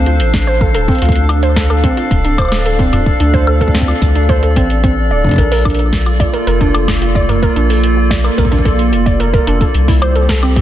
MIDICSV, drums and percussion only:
0, 0, Header, 1, 2, 480
1, 0, Start_track
1, 0, Key_signature, -1, "minor"
1, 0, Tempo, 545455
1, 896, Time_signature, 4, 2, 24, 8
1, 9340, End_track
2, 0, Start_track
2, 0, Title_t, "Drums"
2, 56, Note_on_c, 9, 42, 41
2, 144, Note_off_c, 9, 42, 0
2, 175, Note_on_c, 9, 42, 94
2, 263, Note_off_c, 9, 42, 0
2, 296, Note_on_c, 9, 36, 108
2, 296, Note_on_c, 9, 38, 123
2, 296, Note_on_c, 9, 42, 40
2, 384, Note_off_c, 9, 36, 0
2, 384, Note_off_c, 9, 38, 0
2, 384, Note_off_c, 9, 42, 0
2, 536, Note_on_c, 9, 36, 113
2, 624, Note_off_c, 9, 36, 0
2, 656, Note_on_c, 9, 42, 90
2, 744, Note_off_c, 9, 42, 0
2, 776, Note_on_c, 9, 36, 117
2, 776, Note_on_c, 9, 42, 19
2, 806, Note_off_c, 9, 42, 0
2, 806, Note_on_c, 9, 42, 21
2, 836, Note_off_c, 9, 42, 0
2, 836, Note_on_c, 9, 42, 25
2, 864, Note_off_c, 9, 36, 0
2, 866, Note_off_c, 9, 42, 0
2, 866, Note_on_c, 9, 42, 27
2, 896, Note_off_c, 9, 42, 0
2, 896, Note_on_c, 9, 42, 65
2, 926, Note_off_c, 9, 42, 0
2, 926, Note_on_c, 9, 42, 30
2, 956, Note_off_c, 9, 42, 0
2, 956, Note_on_c, 9, 36, 127
2, 956, Note_on_c, 9, 42, 33
2, 986, Note_off_c, 9, 42, 0
2, 986, Note_on_c, 9, 42, 36
2, 1017, Note_off_c, 9, 42, 0
2, 1017, Note_on_c, 9, 42, 41
2, 1044, Note_off_c, 9, 36, 0
2, 1105, Note_off_c, 9, 42, 0
2, 1136, Note_on_c, 9, 42, 92
2, 1136, Note_on_c, 9, 76, 76
2, 1224, Note_off_c, 9, 42, 0
2, 1224, Note_off_c, 9, 76, 0
2, 1256, Note_on_c, 9, 42, 43
2, 1344, Note_off_c, 9, 42, 0
2, 1376, Note_on_c, 9, 36, 117
2, 1376, Note_on_c, 9, 38, 125
2, 1376, Note_on_c, 9, 42, 69
2, 1464, Note_off_c, 9, 36, 0
2, 1464, Note_off_c, 9, 38, 0
2, 1464, Note_off_c, 9, 42, 0
2, 1496, Note_on_c, 9, 42, 40
2, 1496, Note_on_c, 9, 76, 48
2, 1584, Note_off_c, 9, 42, 0
2, 1584, Note_off_c, 9, 76, 0
2, 1616, Note_on_c, 9, 36, 124
2, 1616, Note_on_c, 9, 42, 94
2, 1704, Note_off_c, 9, 36, 0
2, 1704, Note_off_c, 9, 42, 0
2, 1736, Note_on_c, 9, 42, 39
2, 1824, Note_off_c, 9, 42, 0
2, 1856, Note_on_c, 9, 36, 112
2, 1857, Note_on_c, 9, 42, 67
2, 1944, Note_off_c, 9, 36, 0
2, 1945, Note_off_c, 9, 42, 0
2, 1976, Note_on_c, 9, 42, 39
2, 2064, Note_off_c, 9, 42, 0
2, 2096, Note_on_c, 9, 36, 126
2, 2096, Note_on_c, 9, 42, 97
2, 2096, Note_on_c, 9, 76, 71
2, 2126, Note_off_c, 9, 76, 0
2, 2126, Note_on_c, 9, 76, 62
2, 2156, Note_off_c, 9, 76, 0
2, 2156, Note_on_c, 9, 76, 48
2, 2184, Note_off_c, 9, 36, 0
2, 2184, Note_off_c, 9, 42, 0
2, 2186, Note_off_c, 9, 76, 0
2, 2186, Note_on_c, 9, 76, 41
2, 2216, Note_off_c, 9, 76, 0
2, 2216, Note_on_c, 9, 38, 118
2, 2216, Note_on_c, 9, 42, 38
2, 2216, Note_on_c, 9, 76, 60
2, 2236, Note_off_c, 9, 42, 0
2, 2236, Note_on_c, 9, 42, 30
2, 2246, Note_off_c, 9, 76, 0
2, 2246, Note_on_c, 9, 76, 28
2, 2257, Note_off_c, 9, 42, 0
2, 2257, Note_on_c, 9, 42, 25
2, 2276, Note_off_c, 9, 42, 0
2, 2276, Note_off_c, 9, 76, 0
2, 2276, Note_on_c, 9, 42, 21
2, 2276, Note_on_c, 9, 76, 22
2, 2296, Note_off_c, 9, 42, 0
2, 2296, Note_on_c, 9, 42, 17
2, 2304, Note_off_c, 9, 38, 0
2, 2307, Note_off_c, 9, 76, 0
2, 2307, Note_on_c, 9, 76, 18
2, 2316, Note_off_c, 9, 42, 0
2, 2316, Note_on_c, 9, 42, 14
2, 2337, Note_off_c, 9, 42, 0
2, 2337, Note_on_c, 9, 42, 70
2, 2395, Note_off_c, 9, 76, 0
2, 2425, Note_off_c, 9, 42, 0
2, 2456, Note_on_c, 9, 36, 109
2, 2458, Note_on_c, 9, 42, 40
2, 2544, Note_off_c, 9, 36, 0
2, 2546, Note_off_c, 9, 42, 0
2, 2577, Note_on_c, 9, 42, 89
2, 2577, Note_on_c, 9, 45, 84
2, 2577, Note_on_c, 9, 76, 35
2, 2665, Note_off_c, 9, 42, 0
2, 2665, Note_off_c, 9, 45, 0
2, 2665, Note_off_c, 9, 76, 0
2, 2696, Note_on_c, 9, 36, 127
2, 2784, Note_off_c, 9, 36, 0
2, 2817, Note_on_c, 9, 42, 65
2, 2905, Note_off_c, 9, 42, 0
2, 2936, Note_on_c, 9, 36, 109
2, 2936, Note_on_c, 9, 42, 39
2, 3024, Note_off_c, 9, 36, 0
2, 3024, Note_off_c, 9, 42, 0
2, 3056, Note_on_c, 9, 76, 76
2, 3144, Note_off_c, 9, 76, 0
2, 3176, Note_on_c, 9, 36, 57
2, 3177, Note_on_c, 9, 42, 38
2, 3236, Note_off_c, 9, 36, 0
2, 3236, Note_on_c, 9, 36, 75
2, 3265, Note_off_c, 9, 42, 0
2, 3296, Note_off_c, 9, 36, 0
2, 3296, Note_on_c, 9, 36, 91
2, 3296, Note_on_c, 9, 38, 124
2, 3296, Note_on_c, 9, 42, 65
2, 3356, Note_off_c, 9, 36, 0
2, 3356, Note_on_c, 9, 36, 107
2, 3384, Note_off_c, 9, 38, 0
2, 3384, Note_off_c, 9, 42, 0
2, 3416, Note_on_c, 9, 42, 39
2, 3416, Note_on_c, 9, 76, 49
2, 3444, Note_off_c, 9, 36, 0
2, 3504, Note_off_c, 9, 42, 0
2, 3504, Note_off_c, 9, 76, 0
2, 3536, Note_on_c, 9, 36, 110
2, 3536, Note_on_c, 9, 42, 90
2, 3624, Note_off_c, 9, 36, 0
2, 3624, Note_off_c, 9, 42, 0
2, 3656, Note_on_c, 9, 42, 38
2, 3744, Note_off_c, 9, 42, 0
2, 3776, Note_on_c, 9, 36, 118
2, 3776, Note_on_c, 9, 42, 62
2, 3864, Note_off_c, 9, 36, 0
2, 3864, Note_off_c, 9, 42, 0
2, 3896, Note_on_c, 9, 42, 38
2, 3984, Note_off_c, 9, 42, 0
2, 4016, Note_on_c, 9, 36, 103
2, 4016, Note_on_c, 9, 42, 93
2, 4104, Note_off_c, 9, 36, 0
2, 4104, Note_off_c, 9, 42, 0
2, 4136, Note_on_c, 9, 42, 40
2, 4224, Note_off_c, 9, 42, 0
2, 4256, Note_on_c, 9, 36, 127
2, 4256, Note_on_c, 9, 42, 61
2, 4344, Note_off_c, 9, 36, 0
2, 4344, Note_off_c, 9, 42, 0
2, 4616, Note_on_c, 9, 36, 50
2, 4636, Note_off_c, 9, 36, 0
2, 4636, Note_on_c, 9, 36, 57
2, 4656, Note_off_c, 9, 36, 0
2, 4656, Note_on_c, 9, 36, 68
2, 4675, Note_on_c, 9, 42, 40
2, 4676, Note_off_c, 9, 36, 0
2, 4676, Note_on_c, 9, 36, 77
2, 4696, Note_off_c, 9, 36, 0
2, 4696, Note_on_c, 9, 36, 91
2, 4716, Note_off_c, 9, 36, 0
2, 4716, Note_on_c, 9, 36, 95
2, 4735, Note_off_c, 9, 42, 0
2, 4735, Note_on_c, 9, 42, 60
2, 4736, Note_off_c, 9, 36, 0
2, 4736, Note_on_c, 9, 36, 107
2, 4823, Note_off_c, 9, 42, 0
2, 4824, Note_off_c, 9, 36, 0
2, 4855, Note_on_c, 9, 46, 81
2, 4943, Note_off_c, 9, 46, 0
2, 4975, Note_on_c, 9, 42, 39
2, 4975, Note_on_c, 9, 76, 76
2, 4976, Note_on_c, 9, 36, 124
2, 5015, Note_off_c, 9, 42, 0
2, 5015, Note_on_c, 9, 42, 53
2, 5056, Note_off_c, 9, 42, 0
2, 5056, Note_on_c, 9, 42, 70
2, 5063, Note_off_c, 9, 76, 0
2, 5064, Note_off_c, 9, 36, 0
2, 5095, Note_off_c, 9, 42, 0
2, 5095, Note_on_c, 9, 42, 39
2, 5183, Note_off_c, 9, 42, 0
2, 5215, Note_on_c, 9, 36, 111
2, 5216, Note_on_c, 9, 38, 117
2, 5216, Note_on_c, 9, 42, 66
2, 5303, Note_off_c, 9, 36, 0
2, 5304, Note_off_c, 9, 38, 0
2, 5304, Note_off_c, 9, 42, 0
2, 5336, Note_on_c, 9, 42, 36
2, 5336, Note_on_c, 9, 76, 50
2, 5424, Note_off_c, 9, 42, 0
2, 5424, Note_off_c, 9, 76, 0
2, 5455, Note_on_c, 9, 36, 121
2, 5456, Note_on_c, 9, 42, 90
2, 5543, Note_off_c, 9, 36, 0
2, 5544, Note_off_c, 9, 42, 0
2, 5575, Note_on_c, 9, 42, 39
2, 5663, Note_off_c, 9, 42, 0
2, 5696, Note_on_c, 9, 42, 63
2, 5784, Note_off_c, 9, 42, 0
2, 5815, Note_on_c, 9, 36, 103
2, 5816, Note_on_c, 9, 42, 38
2, 5903, Note_off_c, 9, 36, 0
2, 5904, Note_off_c, 9, 42, 0
2, 5935, Note_on_c, 9, 42, 90
2, 5935, Note_on_c, 9, 76, 78
2, 6023, Note_off_c, 9, 42, 0
2, 6023, Note_off_c, 9, 76, 0
2, 6055, Note_on_c, 9, 36, 118
2, 6055, Note_on_c, 9, 38, 116
2, 6055, Note_on_c, 9, 42, 39
2, 6055, Note_on_c, 9, 76, 58
2, 6143, Note_off_c, 9, 36, 0
2, 6143, Note_off_c, 9, 38, 0
2, 6143, Note_off_c, 9, 42, 0
2, 6143, Note_off_c, 9, 76, 0
2, 6176, Note_on_c, 9, 42, 64
2, 6264, Note_off_c, 9, 42, 0
2, 6295, Note_on_c, 9, 36, 102
2, 6296, Note_on_c, 9, 42, 37
2, 6383, Note_off_c, 9, 36, 0
2, 6384, Note_off_c, 9, 42, 0
2, 6416, Note_on_c, 9, 42, 85
2, 6416, Note_on_c, 9, 45, 92
2, 6416, Note_on_c, 9, 76, 35
2, 6504, Note_off_c, 9, 42, 0
2, 6504, Note_off_c, 9, 45, 0
2, 6504, Note_off_c, 9, 76, 0
2, 6535, Note_on_c, 9, 36, 119
2, 6536, Note_on_c, 9, 42, 41
2, 6623, Note_off_c, 9, 36, 0
2, 6624, Note_off_c, 9, 42, 0
2, 6656, Note_on_c, 9, 42, 60
2, 6744, Note_off_c, 9, 42, 0
2, 6775, Note_on_c, 9, 46, 81
2, 6863, Note_off_c, 9, 46, 0
2, 6895, Note_on_c, 9, 42, 86
2, 6983, Note_off_c, 9, 42, 0
2, 7135, Note_on_c, 9, 36, 122
2, 7135, Note_on_c, 9, 38, 120
2, 7135, Note_on_c, 9, 42, 62
2, 7223, Note_off_c, 9, 36, 0
2, 7223, Note_off_c, 9, 38, 0
2, 7223, Note_off_c, 9, 42, 0
2, 7256, Note_on_c, 9, 42, 37
2, 7256, Note_on_c, 9, 76, 53
2, 7344, Note_off_c, 9, 42, 0
2, 7344, Note_off_c, 9, 76, 0
2, 7375, Note_on_c, 9, 36, 103
2, 7376, Note_on_c, 9, 42, 89
2, 7435, Note_off_c, 9, 36, 0
2, 7435, Note_on_c, 9, 36, 82
2, 7464, Note_off_c, 9, 42, 0
2, 7495, Note_off_c, 9, 36, 0
2, 7495, Note_on_c, 9, 36, 66
2, 7496, Note_on_c, 9, 42, 38
2, 7555, Note_off_c, 9, 36, 0
2, 7555, Note_on_c, 9, 36, 55
2, 7584, Note_off_c, 9, 42, 0
2, 7615, Note_off_c, 9, 36, 0
2, 7615, Note_on_c, 9, 36, 116
2, 7616, Note_on_c, 9, 42, 62
2, 7703, Note_off_c, 9, 36, 0
2, 7704, Note_off_c, 9, 42, 0
2, 7736, Note_on_c, 9, 42, 39
2, 7824, Note_off_c, 9, 42, 0
2, 7856, Note_on_c, 9, 42, 89
2, 7944, Note_off_c, 9, 42, 0
2, 7975, Note_on_c, 9, 36, 103
2, 7976, Note_on_c, 9, 42, 36
2, 8063, Note_off_c, 9, 36, 0
2, 8064, Note_off_c, 9, 42, 0
2, 8096, Note_on_c, 9, 42, 64
2, 8184, Note_off_c, 9, 42, 0
2, 8215, Note_on_c, 9, 36, 112
2, 8216, Note_on_c, 9, 42, 37
2, 8303, Note_off_c, 9, 36, 0
2, 8304, Note_off_c, 9, 42, 0
2, 8336, Note_on_c, 9, 42, 91
2, 8424, Note_off_c, 9, 42, 0
2, 8455, Note_on_c, 9, 36, 104
2, 8456, Note_on_c, 9, 42, 38
2, 8543, Note_off_c, 9, 36, 0
2, 8544, Note_off_c, 9, 42, 0
2, 8576, Note_on_c, 9, 42, 64
2, 8664, Note_off_c, 9, 42, 0
2, 8696, Note_on_c, 9, 36, 112
2, 8696, Note_on_c, 9, 46, 83
2, 8784, Note_off_c, 9, 36, 0
2, 8784, Note_off_c, 9, 46, 0
2, 8817, Note_on_c, 9, 42, 90
2, 8817, Note_on_c, 9, 76, 79
2, 8905, Note_off_c, 9, 42, 0
2, 8905, Note_off_c, 9, 76, 0
2, 8936, Note_on_c, 9, 42, 38
2, 9024, Note_off_c, 9, 42, 0
2, 9056, Note_on_c, 9, 36, 103
2, 9056, Note_on_c, 9, 38, 115
2, 9056, Note_on_c, 9, 42, 67
2, 9144, Note_off_c, 9, 36, 0
2, 9144, Note_off_c, 9, 38, 0
2, 9144, Note_off_c, 9, 42, 0
2, 9176, Note_on_c, 9, 42, 39
2, 9176, Note_on_c, 9, 76, 55
2, 9264, Note_off_c, 9, 42, 0
2, 9264, Note_off_c, 9, 76, 0
2, 9296, Note_on_c, 9, 36, 115
2, 9296, Note_on_c, 9, 42, 89
2, 9340, Note_off_c, 9, 36, 0
2, 9340, Note_off_c, 9, 42, 0
2, 9340, End_track
0, 0, End_of_file